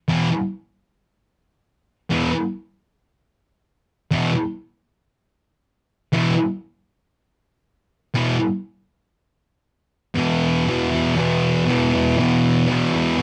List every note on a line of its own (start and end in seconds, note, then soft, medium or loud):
0.08 0.28 E2 medium
0.08 0.29 B2 medium
0.08 0.29 E3 loud
2.10 2.30 E2 medium
2.10 2.30 B2 medium
2.10 2.31 E3 medium
4.11 4.31 E2 medium
4.11 4.32 B2 loud
4.11 4.32 E3 loud
6.12 6.33 E2 medium
6.12 6.33 B2 medium
6.12 6.33 E3 loud
8.14 8.34 E2 medium
8.14 8.35 B2 medium
8.14 8.35 E3 loud
10.14 10.65 E2 medium
10.14 10.67 B2 medium
10.19 10.69 E3 loud
10.66 11.15 E2 medium
10.66 10.93 B2 medium
10.70 10.90 E3 medium
10.90 11.19 E3 medium
10.95 11.17 B2 medium
11.15 11.64 E2 medium
11.15 11.67 B2 medium
11.20 11.69 E3 medium
11.65 12.16 E2 loud
11.65 11.94 B2 loud
11.70 11.91 E3 loud
11.92 12.18 B2 medium
11.92 12.20 E3 medium
12.17 12.66 E2 medium
12.17 12.68 B2 loud
12.21 12.70 E3 loud
12.67 13.16 E2 medium
12.67 12.95 B2 medium
12.71 12.92 E3 medium
12.93 13.18 B2 medium
12.93 13.20 E3 medium
13.17 13.22 E2 medium